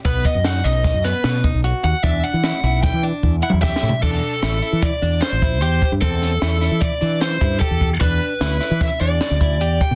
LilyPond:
<<
  \new Staff \with { instrumentName = "Lead electric guitar" } { \time 5/4 \key d \mixolydian \tempo 4 = 151 b'8 dis''8 fis''8 dis''4 b'4 r4 fis''8 | e''8 fis''4. g''8 r4 fis''8 e''4 | a'2 d''4 c''4 c''8. r16 | a'2 d''4 c''4 a'8. r16 |
b'2 e''8 d''2 g''8 | }
  \new Staff \with { instrumentName = "Clean electric guitar" } { \time 5/4 \key d \mixolydian b4 dis'8 dis'4 b4 dis'8 fis'4 | d'4 e'8 e'4 d'4 e'8 g'4 | d'4 e'8 e'4 d'4 e'8 g'4 | c'4 e'8 e'4 d'4 e'8 g'4 |
d'4 e'8 e'4 d'4 e'8 g'4 | }
  \new Staff \with { instrumentName = "Fretless electric bass" } { \clef bass \time 5/4 \key d \mixolydian b,,8 r16 fis,8. b,,8. fis,8 r16 b,8. b,,8 r16 dis,16 r16 | e,8 r16 e8 r16 b,,8. e8 r16 e,8 r16 e,8 r16 a,16 r16 | e,8 r8 a,,8 r16 e8 r16 e,8 r16 a,,8. e,8 r16 g,16 | e,4 e,8. e8 r16 e4 g,8 r16 e,8. |
e,8 r8 d,8 r16 e8 r16 e,8 r16 d,8. e,8 r16 b,16 | }
  \new DrumStaff \with { instrumentName = "Drums" } \drummode { \time 5/4 <hh bd>8 <hh bd>8 <hh sn>8 hh8 <hh bd sn>8 <hh sn>8 <hh sn>8 <hh bd>8 hh8 hh8 | <hh bd>8 hh8 <hh sn>8 hh8 <hh bd sn>8 hh8 \tuplet 3/2 { bd8 r8 toml8 <bd sn>8 sn8 tomfh8 } | <cymc bd>8 hh8 <hh sn>8 hh8 <hh bd>8 hh8 <hh sn>8 <hh bd>8 hh8 <hh bd>8 | <hh bd>8 <hh sn>8 <hh sn>8 <hh sn>8 <hh bd>8 hh8 <hh sn>8 <hh bd>8 <hh bd>8 <hh bd>8 |
<hh bd>8 hh8 <hh sn>8 <hh sn>8 <hh bd sn>8 hh8 <hh sn>8 <hh bd>8 hh8 <hh bd>8 | }
>>